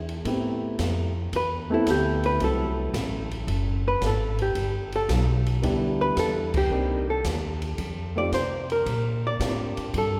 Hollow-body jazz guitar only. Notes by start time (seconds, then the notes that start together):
1.36 B4
1.74 E4
1.91 G4
2.26 B4
2.44 A4
3.88 B4
4.06 A4
4.42 G4
4.96 A4
6.01 B4
6.19 A4
6.57 G4
7.10 A4
8.18 D5
8.34 C5
8.72 A#4
9.27 D5
9.98 A4